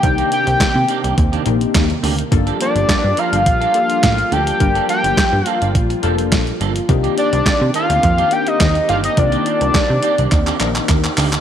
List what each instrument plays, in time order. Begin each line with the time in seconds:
Already playing: analog synth pad C3 D#3 A#3, analog synth lead G5
0.03 analog synth bass C2, analog polysynth A#3 D4 D#4 G4, analog synth pad C4, muted clean electric guitar stroke, kick, closed hi-hat
0.18 clean electric guitar D#3 A#3 D4 G4, closed hi-hat
0.31 clean electric guitar D#3 A#3 D4 G4, analog synth lead G5, closed hi-hat
0.47 analog synth bass C2, muted clean electric guitar stroke, closed hi-hat
0.60 analog synth bass C3, kick, snare, clap, closed hi-hat
0.75 analog synth bass C3, muted clean electric guitar stroke
0.89 clean electric guitar D#3 A#3 D4 G4, closed hi-hat
1.04 analog synth bass C2, clean electric guitar D#3 A#3 D4 G4, closed hi-hat
1.18 analog synth bass D#2, kick, closed hi-hat
1.32 clean electric guitar D#3 A#3 D4 G4, closed hi-hat
1.46 analog synth bass A#1, analog polysynth A#3 D4 D#4 G4, muted clean electric guitar stroke, closed hi-hat
1.61 muted clean electric guitar stroke, closed hi-hat
1.74 analog synth bass D#2, muted clean electric guitar stroke, kick, snare, clap, closed hi-hat
1.90 muted clean electric guitar stroke, closed hi-hat
2.03 analog synth bass D2, clean electric guitar D#3 A#3 D4 G4, open hi-hat
2.18 muted clean electric guitar stroke, closed hi-hat
2.31 analog synth bass G1, analog synth pad F3 G3 G4, analog polysynth A#3 D4 F4 A4, muted clean electric guitar stroke, kick, closed hi-hat
2.47 clean electric guitar F3 A#3 D4 A4, closed hi-hat
2.60 clean electric guitar F3 A#3 D4 A4, analog synth lead D5, closed hi-hat
2.75 analog synth bass G1, muted clean electric guitar stroke, closed hi-hat
2.89 analog synth bass G2, muted clean electric guitar stroke, kick, snare, clap, closed hi-hat
3.04 analog synth bass G2, muted clean electric guitar stroke
3.17 clean electric guitar F3 A#3 D4 A#4, analog synth lead F5, closed hi-hat
3.32 analog synth bass G1, clean electric guitar F3 A#3 D4 A4, closed hi-hat
3.46 analog synth bass A#1, muted clean electric guitar stroke, kick, closed hi-hat
3.61 clean electric guitar F3 A#3 D4 A4, closed hi-hat
3.74 analog polysynth A#3 D4 F4 A4, muted clean electric guitar stroke, closed hi-hat
3.89 muted clean electric guitar stroke, closed hi-hat
4.03 analog synth bass A1, kick, snare, clap, closed hi-hat
4.18 muted clean electric guitar stroke, closed hi-hat
4.31 analog synth bass D2, clean electric guitar F3 A#3 D4 A4, analog synth lead G5, closed hi-hat
4.46 clean electric guitar F3 A#3 D4 A4, closed hi-hat
4.60 analog synth bass G1, analog polysynth A#3 D4 F4 A#4, analog synth pad F4, muted clean electric guitar stroke, kick, closed hi-hat
4.75 clean electric guitar F3 A#3 D4 A4, closed hi-hat
4.88 clean electric guitar F3 A#3 D4 A4, analog synth lead G5, closed hi-hat
5.03 analog synth bass G1, muted clean electric guitar stroke, closed hi-hat
5.17 analog synth bass G2, kick, snare, clap, closed hi-hat
5.32 analog synth bass G2, muted clean electric guitar stroke
5.46 clean electric guitar F3 A#3 D4 A4, analog synth lead F5, closed hi-hat
5.61 analog synth bass G1, clean electric guitar F3 A#3 D4 A4, closed hi-hat
5.75 analog synth bass A#1, kick, closed hi-hat
5.90 muted clean electric guitar stroke, closed hi-hat
6.03 analog synth bass F1, clean electric guitar F3 A#3 D4 A4, analog polysynth A#3 D4 F4 A4, closed hi-hat
6.18 muted clean electric guitar stroke, closed hi-hat
6.32 analog synth bass A#1, muted clean electric guitar stroke, kick, snare, clap, closed hi-hat
6.47 muted clean electric guitar stroke, closed hi-hat
6.60 analog synth bass G1, clean electric guitar F3 A#3 D4 A4, closed hi-hat
6.75 muted clean electric guitar stroke, closed hi-hat
6.88 analog synth bass C2, analog synth pad D#3 A#3 C4 G4, analog polysynth A#3 D4 D#4 G4, muted clean electric guitar stroke, kick, closed hi-hat
7.03 clean electric guitar D#3 A#3 D4 G4, closed hi-hat
7.17 clean electric guitar D#3 A#3 D4 G4, analog synth lead D5, closed hi-hat
7.32 analog synth bass C2, muted clean electric guitar stroke, closed hi-hat
7.45 analog synth bass C3, muted clean electric guitar stroke, kick, snare, clap, closed hi-hat
7.60 analog synth bass C3, muted clean electric guitar stroke
7.74 clean electric guitar D#3 A#3 D4 A4, analog synth lead F5, closed hi-hat
7.89 analog synth bass D2, clean electric guitar D#3 A#3 D4 G4, closed hi-hat
8.03 analog synth bass F2, muted clean electric guitar stroke, kick, closed hi-hat
8.17 clean electric guitar D#3 A#3 D4 G4, closed hi-hat
8.31 analog polysynth A#3 D4 D#4 G4, analog synth lead G5, muted clean electric guitar stroke, closed hi-hat
8.46 analog synth lead D#5, muted clean electric guitar stroke, closed hi-hat
8.60 analog synth bass D#2, kick, snare, clap, closed hi-hat
8.75 muted clean electric guitar stroke, closed hi-hat
8.88 analog synth bass G1, clean electric guitar D#3 A#3 D4 G4, analog synth lead F5, closed hi-hat
9.03 clean electric guitar D#3 A#3 D4 G4, analog synth lead D#5, closed hi-hat
9.17 analog synth bass C2, analog polysynth A#3 D4 D#4 F4, analog synth lead D5, kick, closed hi-hat
9.32 clean electric guitar D#3 A#3 D4 G4, closed hi-hat
9.46 clean electric guitar D#3 A#3 D4 G4, closed hi-hat
9.61 analog synth bass C2, muted clean electric guitar stroke, closed hi-hat
9.74 analog synth bass C3, kick, snare, clap, closed hi-hat
9.89 analog synth bass C3, muted clean electric guitar stroke
10.02 clean electric guitar D#3 A#3 D4 G4, closed hi-hat
10.17 analog synth bass C2, clean electric guitar D#3 A#3 D4 G4, closed hi-hat
10.31 analog synth bass D#2, muted clean electric guitar stroke, kick, clap, closed hi-hat
10.46 clean electric guitar D#3 A#3 D4 G4, clap, closed hi-hat
10.60 analog synth bass A#1, analog polysynth A#3 D4 D#4 A#4, muted clean electric guitar stroke, clap, closed hi-hat
10.75 muted clean electric guitar stroke, clap, closed hi-hat
10.89 analog synth bass D#2, kick, clap, closed hi-hat
11.03 muted clean electric guitar stroke, clap, closed hi-hat
11.17 analog synth bass D2, clean electric guitar D#3 A#3 D4 G4, clap, open hi-hat
11.32 muted clean electric guitar stroke, clap, closed hi-hat